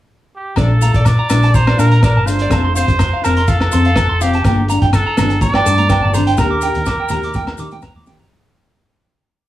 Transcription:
0.36 G4
0.56 A#1 F3 A3 D4 F4 A4 D5, kick, cross-stick, closed hi-hat, low agogo, maracas
0.81 A3 F4 A#5, closed hi-hat, maracas
0.94 A#1 D5, kick, closed hi-hat, maracas
1.05 D5, kick, cross-stick, closed hi-hat, low agogo, maracas
1.19 A#5
1.29 A#1 A3 D4, muted steel-string acoustic guitar stroke, cross-stick, closed hi-hat, low agogo, maracas
1.42 A5, closed hi-hat, maracas
1.54 C5 A#5, kick, closed hi-hat, maracas
1.67 D5, cross-stick, low agogo
1.77 A#2 A3 D4 F4 A#4 A5, closed hi-hat, maracas
1.91 A#5, closed hi-hat
2.03 A#1 D5, kick, cross-stick, closed hi-hat, low agogo, maracas
2.16 G1 A5
2.26 A3 D4 F4 C5, closed hi-hat, maracas
2.39 D5, closed hi-hat
2.49 F1 A3 C4 F4, kick, cross-stick, closed hi-hat, low agogo, maracas
2.53 A5
2.65 C6
2.74 C4 F4 C5 F5, closed hi-hat, maracas
2.88 F1, kick, closed hi-hat, maracas
2.99 C6, kick, cross-stick, closed hi-hat, low agogo, maracas
3.13 F5
3.21 F1 C4 F4 A#4 A5, closed hi-hat, low agogo, maracas
3.37 C6, closed hi-hat, maracas
3.48 A4 F5, kick, closed hi-hat, maracas
3.60 cross-stick, low agogo
3.71 F2 C4 F4 C6, closed hi-hat, maracas
3.85 F5, closed hi-hat
3.96 F1 A5, kick, cross-stick, closed hi-hat, low agogo, maracas
4.09 F1 C6
4.21 C4 F4 G4 F5, closed hi-hat, maracas
4.33 A5, closed hi-hat
4.44 G1 A#3 D4 A4 G5, kick, cross-stick, closed hi-hat, low agogo, maracas
4.68 D4 A4 A#5, closed hi-hat, maracas
4.82 G1 G5, kick, closed hi-hat
4.93 A4, kick, cross-stick, closed hi-hat, low agogo, maracas
5.07 A#5
5.17 G1 D4 A4, cross-stick, closed hi-hat, high conga, low conga, low agogo, maracas
5.30 muted clean electric guitar stroke, closed hi-hat, maracas
5.41 D5 A#5, kick, closed hi-hat, high conga, maracas
5.54 G5, cross-stick, low agogo
5.65 G2 D4 A4 A5, closed hi-hat, maracas
5.77 A#5, closed hi-hat, high conga
5.89 G1 G5, kick, cross-stick, closed hi-hat, low conga, low agogo, maracas
6.03 G1 A5
6.13 D4 A4 C5 A#5, closed hi-hat, low conga, maracas
6.27 G5, closed hi-hat
6.38 D#2 A#3 D#4 G4 A#4 A#5, kick, cross-stick, closed hi-hat, low conga, low agogo, maracas
6.51 D6
6.61 G4 G5, closed hi-hat, maracas
6.66 D#4
6.74 D#2, closed hi-hat, maracas
6.86 D6, kick, cross-stick, closed hi-hat, low agogo, maracas
7.00 G5
7.09 D#2 G4 A#5, closed hi-hat, high conga, low conga, low agogo, maracas
7.14 D#4
7.23 D6, closed hi-hat, maracas
7.34 G5, kick, closed hi-hat, high conga, maracas
7.47 cross-stick, low agogo
7.57 D#3 G4 D6, closed hi-hat, maracas
7.62 D#4
7.71 G5, closed hi-hat, high conga, maracas
7.82 D#2 A#5, kick, cross-stick, closed hi-hat, low conga, low agogo, maracas
7.95 D#2 D6, high conga
8.06 D#4 G4 G5, snare, low conga, maracas
8.19 A#5, floor tom, maracas

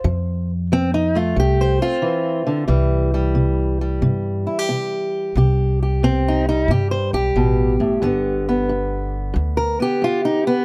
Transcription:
Already playing: C5
0.04 F2 F3
0.72 F3 C4
0.94 D#4
1.15 A3 F4
1.36 C2 F3 G4
1.61 C5
1.82 C4 F4
2.02 E3
2.47 D3
2.68 C2 C3 E3 G3
3.14 G3
3.35 C3
3.81 G3
4.02 G2 C3
4.47 E4
4.59 G4
4.69 C3
5.35 C2 C3 G4
5.83 G4
6.03 C3 C4
6.28 D#4
6.49 G3 D#4
6.68 G2 C3 G4
6.91 C5
7.13 B1 G4
7.36 A1 B2
7.80 G1 A2
8.02 G1 G2 D3 B3
8.49 B3
8.69 G2
9.34 D2 G2
9.57 A#4
9.80 B3 G4
10.02 G2 F4
10.25 D#4
10.47 B3

